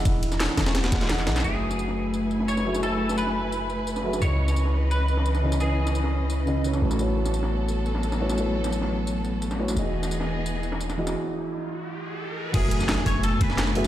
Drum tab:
CC |--------------------------------|--------------------------------|--------------------------------|--------------------------------|
RD |x---x---x---x-x-x-x-x-x-x---x-xx|x---x---x---x---x---x---x---x---|x---x---x---x---x---x-x-x-------|x---x---x---x---x---x---x---x---|
HH |x---x---x---o---x---x---x---o---|--------------------------------|----------------------------o---|--------------------------------|
TB |x---x-x-x---x---x---x---x-x---x-|x-----x-x-------x---x---x-x---x-|x-----x-x-------x---x---x-x---x-|x-----x-x-------x---x---x-x---x-|
CP |--------------------------x---x-|--------------------------------|--------------------------------|--------------------------------|
SD |------o-o-o-o-o-o-o-o-o-o-o-o-oo|------o---o-----------o---o---o-|------o---o---------------o---o-|------o---o-----------o---o---o-|
BD |o-----------o-------o-----------|--------------------------------|--------------------------------|--------------------------------|

CC |--------------------------------|--------------------------------|--------------------------------|--------------------------------|
RD |x---x---x---x---x---x-x-x-------|x---x---x---x---x---x---x---x---|x---x---x---x---x---x-x-x-------|x---x---x---x---x---x---x---x---|
HH |----------------------------o---|--------------------------------|----------------------------o---|--------------------------------|
TB |x-----x-x-------x---x---x-x---x-|x-----x-x-------x---x---x-x---x-|x-----x-x-------x---x---x-x---x-|x-----x-x-------x---x---x-x---x-|
CP |--------------------------------|--------------------------------|--------------------------------|--------------------------------|
SD |------o---o---------------o---o-|------o---o-----------o---o---o-|------o---o---------------o---o-|------o---o-----------o---o---o-|
BD |--------------------------------|--------------------------------|--------------------------------|--------------------------------|

CC |--------------------------------|x-------------------------------|
RD |--------------------------------|x---x---x---x---x---x---x---x---|
HH |--------------------------------|x---x---x---o---x---x---x---o---|
TB |--------------------------------|x-----x-x-------x---x---x-x-----|
CP |--------------------------------|--------------------------------|
SD |--------------------------------|------o-o-o-----------o-o-o-----|
BD |--------------------------------|o-----------o-------o-----------|